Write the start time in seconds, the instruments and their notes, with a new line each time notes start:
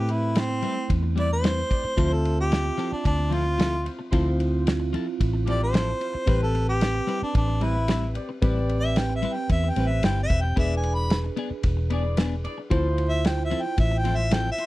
Already playing: fingered electric bass A2, tine electric piano A3 C4 E4, harmonica G4, horn section G4 B4
0.08 harmonica E4, muted clean electric guitar stroke, ride
0.35 harmonica C4, muted clean electric guitar stroke, snare, ride
0.49 muted clean electric guitar stroke
0.62 clean electric guitar G3 C4 E4 B4, ride
0.76 muted clean electric guitar stroke
0.90 fingered electric bass E2, kick, ride
1.03 muted clean electric guitar stroke
1.13 clean electric guitar G3 C4, horn section C4 G4 D5
1.17 clean electric guitar E4 B4, harmonica D5, ride
1.30 harmonica C5, muted clean electric guitar stroke
1.43 clean electric guitar G3 C4 E4 B4, snare, ride
1.68 horn section C4 G4 D5, muted clean electric guitar stroke, kick, ride
1.84 muted clean electric guitar stroke, muted fingered electric bass stroke
1.95 fingered electric bass D2, clean electric guitar F3 C4 E4, tine electric piano C4 F4 E5, horn section F4 C5, kick, ride
1.99 clean electric guitar A4
2.13 harmonica A4
2.24 muted clean electric guitar stroke, ride
2.40 harmonica G4
2.51 muted clean electric guitar stroke, snare, ride
2.64 muted clean electric guitar stroke
2.77 clean electric guitar F3 C4 E4 A4, ride
2.91 harmonica D4, muted clean electric guitar stroke, muted fingered electric bass stroke
3.05 fingered electric bass D2, harmonica D4, kick, ride
3.18 muted clean electric guitar stroke
3.29 clean electric guitar F3 C4 E4, horn section E4 F4 C5, ride
3.34 harmonica F4, clean electric guitar A4
3.44 muted clean electric guitar stroke
3.58 clean electric guitar F3 C4 E4 A4, snare, ride
3.82 horn section E4 F4 C5, muted clean electric guitar stroke, ride
3.99 muted clean electric guitar stroke
4.11 fingered electric bass D2, horn section F3 C5, clean electric guitar F3 C4 E4 A4, tine electric piano C4 E4 F4, kick, ride
4.39 muted clean electric guitar stroke, ride
4.66 muted clean electric guitar stroke, snare, ride
4.80 muted clean electric guitar stroke
4.93 clean electric guitar F3 C4 E4 A4, ride
5.07 muted clean electric guitar stroke
5.20 fingered electric bass A1, kick, ride
5.33 muted clean electric guitar stroke
5.45 clean electric guitar F3 C4, horn section E4 F4 G4, ride
5.49 clean electric guitar E4 A4, harmonica D5
5.60 harmonica C5, muted clean electric guitar stroke
5.73 clean electric guitar F3 C4 E4 A4, snare, ride
6.00 horn section E4 F4 C5, muted clean electric guitar stroke, ride
6.14 muted clean electric guitar stroke, muted fingered electric bass stroke
6.26 fingered electric bass A1, clean electric guitar G3 C4 E4 B4, horn section C4 G4 B4, tine electric piano C4 G4 B4, kick, ride
6.43 harmonica A4
6.54 muted clean electric guitar stroke, ride
6.69 harmonica G4
6.81 muted clean electric guitar stroke, snare, ride
6.94 muted clean electric guitar stroke
7.07 clean electric guitar G3 C4 E4 B4, ride
7.21 harmonica D4, muted clean electric guitar stroke, muted fingered electric bass stroke
7.35 fingered electric bass A1, harmonica D4, kick, ride
7.48 muted clean electric guitar stroke
7.60 clean electric guitar G3 C4 E4, horn section C4 G4 B4, harmonica E4, ride
7.64 clean electric guitar B4
7.76 muted clean electric guitar stroke
7.88 clean electric guitar G3 C4 E4 B4, snare, ride
8.13 horn section C4 G4 D5, muted clean electric guitar stroke, ride
8.29 muted clean electric guitar stroke
8.42 fingered electric bass A1, clean electric guitar G3 C4 E4 B4, tine electric piano C4 G4 B4, horn section C4 G4 D5, kick, ride
8.69 muted clean electric guitar stroke, ride
8.80 harmonica E5
8.96 harmonica G5, muted clean electric guitar stroke, snare, ride
9.09 muted clean electric guitar stroke
9.16 harmonica E5
9.22 clean electric guitar G3 C4 E4 B4, ride
9.34 harmonica G5, muted clean electric guitar stroke
9.49 fingered electric bass E2, harmonica E5, kick, ride
9.64 muted clean electric guitar stroke
9.70 harmonica G5
9.76 fingered electric bass A1, clean electric guitar G3 C4 E4 B4, horn section C4 G4 B4, tine electric piano C4 G4 C5, ride
9.87 harmonica E5, muted clean electric guitar stroke
10.02 fingered electric bass G1, clean electric guitar G3 C4 E4 B4, harmonica G5, snare, ride
10.23 harmonica E5
10.29 fingered electric bass E1, horn section C4 G4 B4, muted clean electric guitar stroke, kick, ride
10.41 harmonica G5, muted clean electric guitar stroke
10.56 fingered electric bass E1, clean electric guitar B3 D4 G#4, tine electric piano D4 G#4 B4, horn section E4 G#4 D5, harmonica E5, kick, ride
10.77 harmonica G#5
10.83 muted clean electric guitar stroke, ride
10.94 harmonica B5
11.10 muted clean electric guitar stroke, snare, ride
11.24 muted clean electric guitar stroke
11.36 clean electric guitar B3 D4 G#4, ride
11.50 muted clean electric guitar stroke, muted fingered electric bass stroke
11.63 fingered electric bass E1, kick, ride
11.77 muted clean electric guitar stroke
11.89 clean electric guitar B3 D4, horn section E4 G#4 D5, ride
11.93 clean electric guitar G#4
12.04 muted clean electric guitar stroke
12.17 clean electric guitar B3 D4 G#4, snare, ride
12.44 horn section E4 G#4 D5, muted clean electric guitar stroke, ride
12.58 muted clean electric guitar stroke
12.70 fingered electric bass D2, clean electric guitar F3 C4 E4 A4, horn section F3 C5, tine electric piano E4 F4 C5, kick, ride
12.98 muted clean electric guitar stroke, ride
13.09 harmonica E5
13.25 harmonica G5, muted clean electric guitar stroke, snare, ride
13.38 muted clean electric guitar stroke
13.45 harmonica E5
13.50 clean electric guitar F3 C4 E4 A4, ride
13.62 harmonica G5, muted clean electric guitar stroke
13.78 fingered electric bass A1, harmonica E5, kick, ride
13.91 muted clean electric guitar stroke
13.98 harmonica G5
14.04 clean electric guitar F3 C4 E4 A4, horn section E4 F4 C5, ride
14.16 harmonica E5, muted clean electric guitar stroke
14.31 clean electric guitar F3 C4 E4 A4, harmonica G5, snare, ride
14.52 harmonica E5
14.58 horn section E4 F4 C5, muted clean electric guitar stroke, ride